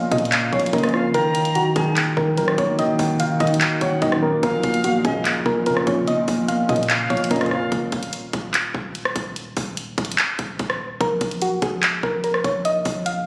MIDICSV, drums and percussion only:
0, 0, Header, 1, 2, 480
1, 0, Start_track
1, 0, Tempo, 410959
1, 1335, Time_signature, 4, 2, 24, 8
1, 15492, End_track
2, 0, Start_track
2, 0, Title_t, "Drums"
2, 135, Note_on_c, 9, 36, 94
2, 135, Note_on_c, 9, 42, 65
2, 215, Note_off_c, 9, 42, 0
2, 215, Note_on_c, 9, 42, 64
2, 251, Note_off_c, 9, 36, 0
2, 295, Note_off_c, 9, 42, 0
2, 295, Note_on_c, 9, 42, 63
2, 376, Note_off_c, 9, 42, 0
2, 376, Note_on_c, 9, 39, 120
2, 376, Note_on_c, 9, 42, 87
2, 493, Note_off_c, 9, 39, 0
2, 493, Note_off_c, 9, 42, 0
2, 614, Note_on_c, 9, 36, 92
2, 615, Note_on_c, 9, 42, 42
2, 695, Note_off_c, 9, 42, 0
2, 695, Note_on_c, 9, 42, 59
2, 731, Note_off_c, 9, 36, 0
2, 775, Note_off_c, 9, 42, 0
2, 775, Note_on_c, 9, 42, 71
2, 855, Note_off_c, 9, 42, 0
2, 855, Note_on_c, 9, 42, 58
2, 856, Note_on_c, 9, 36, 97
2, 915, Note_off_c, 9, 42, 0
2, 915, Note_on_c, 9, 42, 51
2, 973, Note_off_c, 9, 36, 0
2, 975, Note_on_c, 9, 37, 93
2, 976, Note_off_c, 9, 42, 0
2, 976, Note_on_c, 9, 42, 45
2, 1036, Note_off_c, 9, 42, 0
2, 1036, Note_on_c, 9, 42, 35
2, 1092, Note_off_c, 9, 37, 0
2, 1095, Note_on_c, 9, 37, 74
2, 1152, Note_off_c, 9, 42, 0
2, 1212, Note_off_c, 9, 37, 0
2, 1335, Note_on_c, 9, 42, 67
2, 1452, Note_off_c, 9, 42, 0
2, 1573, Note_on_c, 9, 46, 85
2, 1575, Note_on_c, 9, 42, 66
2, 1690, Note_off_c, 9, 46, 0
2, 1692, Note_off_c, 9, 42, 0
2, 1696, Note_on_c, 9, 42, 67
2, 1812, Note_off_c, 9, 42, 0
2, 1814, Note_on_c, 9, 42, 90
2, 1931, Note_off_c, 9, 42, 0
2, 2054, Note_on_c, 9, 42, 72
2, 2055, Note_on_c, 9, 36, 94
2, 2171, Note_off_c, 9, 42, 0
2, 2172, Note_off_c, 9, 36, 0
2, 2296, Note_on_c, 9, 39, 119
2, 2296, Note_on_c, 9, 42, 87
2, 2413, Note_off_c, 9, 39, 0
2, 2413, Note_off_c, 9, 42, 0
2, 2534, Note_on_c, 9, 36, 90
2, 2651, Note_off_c, 9, 36, 0
2, 2774, Note_on_c, 9, 42, 57
2, 2891, Note_off_c, 9, 42, 0
2, 2895, Note_on_c, 9, 37, 93
2, 3012, Note_off_c, 9, 37, 0
2, 3015, Note_on_c, 9, 36, 99
2, 3015, Note_on_c, 9, 42, 85
2, 3131, Note_off_c, 9, 36, 0
2, 3132, Note_off_c, 9, 42, 0
2, 3255, Note_on_c, 9, 42, 67
2, 3372, Note_off_c, 9, 42, 0
2, 3493, Note_on_c, 9, 46, 85
2, 3495, Note_on_c, 9, 36, 91
2, 3610, Note_off_c, 9, 46, 0
2, 3612, Note_off_c, 9, 36, 0
2, 3734, Note_on_c, 9, 42, 87
2, 3851, Note_off_c, 9, 42, 0
2, 3975, Note_on_c, 9, 36, 92
2, 3975, Note_on_c, 9, 42, 61
2, 4055, Note_off_c, 9, 42, 0
2, 4055, Note_on_c, 9, 42, 62
2, 4091, Note_off_c, 9, 36, 0
2, 4134, Note_off_c, 9, 42, 0
2, 4134, Note_on_c, 9, 42, 64
2, 4215, Note_on_c, 9, 39, 122
2, 4216, Note_off_c, 9, 42, 0
2, 4216, Note_on_c, 9, 42, 89
2, 4332, Note_off_c, 9, 39, 0
2, 4332, Note_off_c, 9, 42, 0
2, 4453, Note_on_c, 9, 42, 68
2, 4454, Note_on_c, 9, 36, 92
2, 4569, Note_off_c, 9, 42, 0
2, 4571, Note_off_c, 9, 36, 0
2, 4693, Note_on_c, 9, 42, 57
2, 4696, Note_on_c, 9, 36, 98
2, 4810, Note_off_c, 9, 42, 0
2, 4813, Note_off_c, 9, 36, 0
2, 4814, Note_on_c, 9, 37, 97
2, 4931, Note_off_c, 9, 37, 0
2, 5175, Note_on_c, 9, 36, 120
2, 5175, Note_on_c, 9, 42, 69
2, 5292, Note_off_c, 9, 36, 0
2, 5292, Note_off_c, 9, 42, 0
2, 5413, Note_on_c, 9, 46, 84
2, 5415, Note_on_c, 9, 36, 89
2, 5415, Note_on_c, 9, 42, 68
2, 5530, Note_off_c, 9, 46, 0
2, 5532, Note_off_c, 9, 36, 0
2, 5532, Note_off_c, 9, 42, 0
2, 5535, Note_on_c, 9, 42, 67
2, 5652, Note_off_c, 9, 42, 0
2, 5654, Note_on_c, 9, 42, 90
2, 5771, Note_off_c, 9, 42, 0
2, 5894, Note_on_c, 9, 42, 73
2, 5895, Note_on_c, 9, 36, 94
2, 6011, Note_off_c, 9, 42, 0
2, 6012, Note_off_c, 9, 36, 0
2, 6136, Note_on_c, 9, 39, 121
2, 6136, Note_on_c, 9, 42, 84
2, 6253, Note_off_c, 9, 39, 0
2, 6253, Note_off_c, 9, 42, 0
2, 6375, Note_on_c, 9, 36, 92
2, 6491, Note_off_c, 9, 36, 0
2, 6614, Note_on_c, 9, 42, 59
2, 6731, Note_off_c, 9, 42, 0
2, 6735, Note_on_c, 9, 37, 94
2, 6852, Note_off_c, 9, 37, 0
2, 6855, Note_on_c, 9, 36, 95
2, 6856, Note_on_c, 9, 42, 85
2, 6972, Note_off_c, 9, 36, 0
2, 6973, Note_off_c, 9, 42, 0
2, 7096, Note_on_c, 9, 42, 67
2, 7213, Note_off_c, 9, 42, 0
2, 7333, Note_on_c, 9, 46, 84
2, 7336, Note_on_c, 9, 36, 92
2, 7450, Note_off_c, 9, 46, 0
2, 7453, Note_off_c, 9, 36, 0
2, 7574, Note_on_c, 9, 42, 90
2, 7691, Note_off_c, 9, 42, 0
2, 7815, Note_on_c, 9, 36, 92
2, 7816, Note_on_c, 9, 42, 63
2, 7895, Note_off_c, 9, 42, 0
2, 7895, Note_on_c, 9, 42, 64
2, 7932, Note_off_c, 9, 36, 0
2, 7975, Note_off_c, 9, 42, 0
2, 7975, Note_on_c, 9, 42, 63
2, 8056, Note_off_c, 9, 42, 0
2, 8056, Note_on_c, 9, 39, 122
2, 8056, Note_on_c, 9, 42, 86
2, 8173, Note_off_c, 9, 39, 0
2, 8173, Note_off_c, 9, 42, 0
2, 8295, Note_on_c, 9, 36, 89
2, 8295, Note_on_c, 9, 42, 45
2, 8375, Note_off_c, 9, 42, 0
2, 8375, Note_on_c, 9, 42, 57
2, 8411, Note_off_c, 9, 36, 0
2, 8455, Note_off_c, 9, 42, 0
2, 8455, Note_on_c, 9, 42, 74
2, 8535, Note_off_c, 9, 42, 0
2, 8535, Note_on_c, 9, 42, 59
2, 8536, Note_on_c, 9, 36, 95
2, 8595, Note_off_c, 9, 42, 0
2, 8595, Note_on_c, 9, 42, 50
2, 8653, Note_off_c, 9, 36, 0
2, 8655, Note_off_c, 9, 42, 0
2, 8655, Note_on_c, 9, 37, 98
2, 8655, Note_on_c, 9, 42, 45
2, 8715, Note_off_c, 9, 42, 0
2, 8715, Note_on_c, 9, 42, 36
2, 8772, Note_off_c, 9, 37, 0
2, 8775, Note_on_c, 9, 37, 73
2, 8832, Note_off_c, 9, 42, 0
2, 8892, Note_off_c, 9, 37, 0
2, 9015, Note_on_c, 9, 36, 116
2, 9015, Note_on_c, 9, 42, 65
2, 9132, Note_off_c, 9, 36, 0
2, 9132, Note_off_c, 9, 42, 0
2, 9253, Note_on_c, 9, 46, 82
2, 9255, Note_on_c, 9, 36, 89
2, 9255, Note_on_c, 9, 42, 65
2, 9370, Note_off_c, 9, 46, 0
2, 9372, Note_off_c, 9, 36, 0
2, 9372, Note_off_c, 9, 42, 0
2, 9375, Note_on_c, 9, 42, 64
2, 9492, Note_off_c, 9, 42, 0
2, 9494, Note_on_c, 9, 42, 88
2, 9611, Note_off_c, 9, 42, 0
2, 9734, Note_on_c, 9, 42, 71
2, 9735, Note_on_c, 9, 36, 90
2, 9851, Note_off_c, 9, 36, 0
2, 9851, Note_off_c, 9, 42, 0
2, 9975, Note_on_c, 9, 39, 121
2, 9976, Note_on_c, 9, 42, 82
2, 10092, Note_off_c, 9, 39, 0
2, 10092, Note_off_c, 9, 42, 0
2, 10214, Note_on_c, 9, 36, 86
2, 10331, Note_off_c, 9, 36, 0
2, 10454, Note_on_c, 9, 42, 55
2, 10571, Note_off_c, 9, 42, 0
2, 10575, Note_on_c, 9, 37, 94
2, 10692, Note_off_c, 9, 37, 0
2, 10695, Note_on_c, 9, 36, 94
2, 10695, Note_on_c, 9, 42, 81
2, 10812, Note_off_c, 9, 36, 0
2, 10812, Note_off_c, 9, 42, 0
2, 10935, Note_on_c, 9, 42, 67
2, 11052, Note_off_c, 9, 42, 0
2, 11173, Note_on_c, 9, 46, 79
2, 11176, Note_on_c, 9, 36, 89
2, 11290, Note_off_c, 9, 46, 0
2, 11292, Note_off_c, 9, 36, 0
2, 11414, Note_on_c, 9, 42, 86
2, 11531, Note_off_c, 9, 42, 0
2, 11655, Note_on_c, 9, 36, 91
2, 11655, Note_on_c, 9, 42, 61
2, 11735, Note_off_c, 9, 42, 0
2, 11735, Note_on_c, 9, 42, 61
2, 11772, Note_off_c, 9, 36, 0
2, 11815, Note_off_c, 9, 42, 0
2, 11815, Note_on_c, 9, 42, 62
2, 11896, Note_off_c, 9, 42, 0
2, 11896, Note_on_c, 9, 39, 117
2, 11896, Note_on_c, 9, 42, 80
2, 12013, Note_off_c, 9, 39, 0
2, 12013, Note_off_c, 9, 42, 0
2, 12133, Note_on_c, 9, 42, 67
2, 12134, Note_on_c, 9, 36, 87
2, 12250, Note_off_c, 9, 42, 0
2, 12251, Note_off_c, 9, 36, 0
2, 12373, Note_on_c, 9, 42, 58
2, 12376, Note_on_c, 9, 36, 94
2, 12490, Note_off_c, 9, 42, 0
2, 12493, Note_off_c, 9, 36, 0
2, 12495, Note_on_c, 9, 37, 95
2, 12611, Note_off_c, 9, 37, 0
2, 12855, Note_on_c, 9, 36, 117
2, 12855, Note_on_c, 9, 42, 66
2, 12971, Note_off_c, 9, 36, 0
2, 12971, Note_off_c, 9, 42, 0
2, 13093, Note_on_c, 9, 46, 83
2, 13095, Note_on_c, 9, 36, 85
2, 13095, Note_on_c, 9, 42, 63
2, 13209, Note_off_c, 9, 46, 0
2, 13211, Note_off_c, 9, 42, 0
2, 13212, Note_off_c, 9, 36, 0
2, 13215, Note_on_c, 9, 42, 63
2, 13332, Note_off_c, 9, 42, 0
2, 13334, Note_on_c, 9, 42, 87
2, 13450, Note_off_c, 9, 42, 0
2, 13574, Note_on_c, 9, 42, 70
2, 13575, Note_on_c, 9, 36, 89
2, 13691, Note_off_c, 9, 36, 0
2, 13691, Note_off_c, 9, 42, 0
2, 13815, Note_on_c, 9, 39, 115
2, 13816, Note_on_c, 9, 42, 85
2, 13932, Note_off_c, 9, 39, 0
2, 13932, Note_off_c, 9, 42, 0
2, 14054, Note_on_c, 9, 36, 89
2, 14171, Note_off_c, 9, 36, 0
2, 14294, Note_on_c, 9, 42, 56
2, 14410, Note_off_c, 9, 42, 0
2, 14415, Note_on_c, 9, 37, 92
2, 14532, Note_off_c, 9, 37, 0
2, 14535, Note_on_c, 9, 36, 92
2, 14535, Note_on_c, 9, 42, 80
2, 14651, Note_off_c, 9, 36, 0
2, 14652, Note_off_c, 9, 42, 0
2, 14775, Note_on_c, 9, 42, 66
2, 14892, Note_off_c, 9, 42, 0
2, 15013, Note_on_c, 9, 46, 80
2, 15015, Note_on_c, 9, 36, 85
2, 15130, Note_off_c, 9, 46, 0
2, 15132, Note_off_c, 9, 36, 0
2, 15254, Note_on_c, 9, 42, 87
2, 15371, Note_off_c, 9, 42, 0
2, 15492, End_track
0, 0, End_of_file